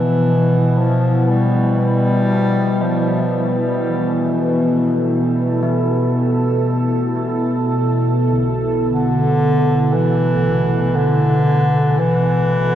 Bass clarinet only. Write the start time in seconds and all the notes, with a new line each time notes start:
Already playing: E3
0.78 F3
1.29 G3
1.80 G3
2.82 F3
3.83 E3
8.92 D3
9.94 E3
10.96 D3
11.99 E3